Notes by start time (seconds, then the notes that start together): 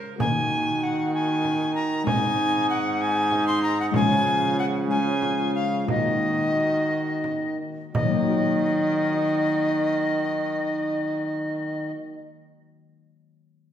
Already playing: C#3 G#3 C#4 G#4 A#4
0.18 D#3 A#3 D#4 F#4 G#5, frame drum
0.83 F#5
1.14 G#5
1.45 frame drum
1.75 A#5
2.03 G#2 G#3 C4 D#4 G#5, frame drum
2.07 D#4
2.70 F#5
3.00 D#4 G#5
3.32 frame drum
3.48 C6
3.63 A#5
3.80 F#5
3.91 C#3 F3 G#3 C#4 F4, frame drum
3.96 G#5
4.59 F#5
4.86 G#3 C#4 F4
4.90 G#5
5.22 frame drum
5.55 F5
5.86 D#3 A#3 F#4 D#5, frame drum
7.24 frame drum
7.94 D#3 F#4 D#5, frame drum
8.03 F#3
8.09 A#3
8.16 D#4
8.23 F#4
8.30 A#4